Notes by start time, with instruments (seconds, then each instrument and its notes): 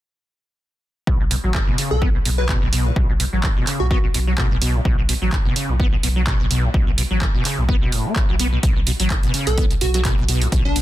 1.07 sub bass B1, acid bass B2, kick
1.20 acid bass B2
1.31 acid bass B2, open hi-hat
1.44 sub bass A1, acid bass F#3
1.54 acid bass D3, kick, clap
1.67 acid bass B2
1.78 acid bass C#3, open hi-hat
1.91 sub bass B1, acid bass A2, digital synth lead A4
2.02 acid bass B3, kick
2.15 acid bass B2
2.25 sub bass B1, acid bass B2, open hi-hat
2.38 acid bass F#3, digital synth lead B4
2.49 acid bass B2, kick, clap
2.62 sub bass B1, acid bass B2
2.73 acid bass B2, open hi-hat
2.86 acid bass A2
2.96 sub bass B1, acid bass B2, kick
3.09 acid bass B2
3.20 acid bass B2, open hi-hat
3.33 sub bass A1, acid bass F#3
3.43 acid bass D3, kick, clap
3.56 acid bass B2
3.67 acid bass C#3, clap, open hi-hat
3.80 sub bass B1, acid bass A2, digital synth lead F#4
3.91 acid bass B3, digital synth lead F#4, kick
4.04 acid bass B2
4.14 sub bass B1, acid bass B2, open hi-hat
4.27 acid bass F#3
4.38 acid bass B2, kick, clap
4.51 sub bass B1, acid bass B2
4.62 acid bass B2, open hi-hat
4.74 acid bass A2
4.85 sub bass B1, acid bass B2, kick
4.98 acid bass B2
5.09 acid bass B2, open hi-hat
5.22 sub bass A1, acid bass F#3
5.32 acid bass D3, kick, clap
5.45 acid bass B2
5.56 acid bass C#3, open hi-hat
5.69 sub bass B1, acid bass A2
5.80 acid bass B3, kick
5.92 acid bass B2
6.03 sub bass B1, acid bass B2, open hi-hat
6.16 acid bass F#3
6.27 acid bass B2, kick, clap
6.40 sub bass B1, acid bass B2
6.50 acid bass B2, open hi-hat
6.64 acid bass A2
6.74 sub bass B1, acid bass B2, kick
6.87 acid bass B2
6.98 acid bass B2, open hi-hat
7.11 sub bass A1, acid bass F#3
7.21 acid bass D3, kick, clap
7.34 acid bass B2
7.45 acid bass C#3, clap, open hi-hat
7.58 sub bass B1, acid bass A2
7.69 acid bass B3, kick
7.81 acid bass B2
7.92 sub bass F#1, acid bass A2, open hi-hat
8.05 acid bass B3
8.16 acid bass B2, kick, clap
8.29 sub bass B1, acid bass F#3
8.39 acid bass B3, open hi-hat
8.52 acid bass B2
8.63 sub bass B1, acid bass B2, kick, closed hi-hat
8.76 acid bass B2
8.87 acid bass B2, open hi-hat
9.00 sub bass A1, acid bass F#3, closed hi-hat
9.10 acid bass D3, kick, clap, closed hi-hat
9.23 acid bass B2, closed hi-hat
9.34 acid bass C#3, open hi-hat
9.47 sub bass B1, acid bass A2, digital synth lead A4, closed hi-hat
9.58 acid bass B3, kick, closed hi-hat
9.71 acid bass B2, closed hi-hat
9.81 sub bass B1, acid bass B2, digital synth lead F#4, open hi-hat
9.94 acid bass F#3, digital synth lead F#4, closed hi-hat
10.05 acid bass B2, kick, clap, closed hi-hat
10.18 sub bass B1, acid bass B2
10.29 acid bass B2, open hi-hat
10.41 acid bass A2, closed hi-hat
10.52 sub bass B1, acid bass B2, kick, closed hi-hat
10.65 acid bass B2, digital synth lead D4
10.76 acid bass B2, open hi-hat